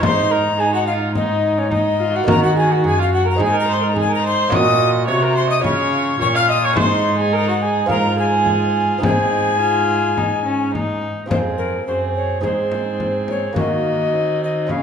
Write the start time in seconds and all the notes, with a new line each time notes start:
Already playing: G#3
0.00 G#2 C4 D#4 C5 C6, frame drum
0.31 A#4 A#5
0.57 D#4 G#4 G#5
0.73 F#4 F#5
0.87 F4 F5
1.15 D#4 D#5, frame drum
1.57 C#4 C#5
1.70 D#4, frame drum
1.74 D#5
1.98 F4
2.13 F#4 F#5
2.24 D#3 A#3 D#4 F#4 A#4
2.28 D#3 A#5, frame drum
2.42 F#4 F#5
2.56 G#4 G#5
2.71 F#4 F#5
2.84 F#2 G#4 G#5
2.99 F4 F5
3.13 F#4 F#5
3.25 A#4
3.31 A#5
3.35 G#2 C4 D#4 G#4
3.39 G#2 D#4 G#4, frame drum
3.44 G#5
3.53 A#4
3.60 A#5
3.68 C5
3.74 C6
3.81 A#4
3.89 A#5
3.94 D#4 G#4, frame drum
4.00 G#5
4.09 A#4
4.15 A#5
4.22 C5
4.28 C6
4.48 A#2 A#3 F#4 C#5 D#5, frame drum
4.55 D#6
5.07 C3 F#4 C#5 C#6
5.22 A#4 A#5
5.35 C5 C6
5.50 D#5 D#6
5.60 C#3 G#3 C#4 F4 C#5
5.64 C#3 F4 C#6, frame drum
6.19 A#2 F4 C#5 C#6, frame drum
6.35 F5 F6
6.49 D#5 D#6
6.63 C#5 C#6
6.73 G#2 G#3 D#4 G#4 C5, frame drum
6.81 C6
7.18 G#4 G#5
7.33 A#4 A#5
7.48 F#4 F#5
7.62 G#4 G#5
7.86 G#2 C4 F4 G#4 A#5, frame drum
7.90 G#2 F4 A#4
8.19 G#4 G#5
8.46 frame drum
8.98 G#2 C4 D#4 G#4
9.03 G#2 C4 G#4 G#5, frame drum
9.60 F4
10.17 D#4, frame drum
10.46 C#4
10.74 D#4, frame drum
11.26 F2 C4 F4 G#4
11.30 F2 C4 G#4 C5, frame drum
11.58 A#4
11.87 F#2 C4 G#4 C5
12.15 C#5
12.41 G#2 C4 D#4 G#4 C5, frame drum
12.72 frame drum
13.00 frame drum
13.28 C#5, frame drum
13.53 A#3 F#4, frame drum
13.57 D#3 A#3 F#4 D#5
14.13 C4
14.44 D#5
14.67 C#3 C#4 F4 G#4, frame drum
14.71 C#3 C#4 F5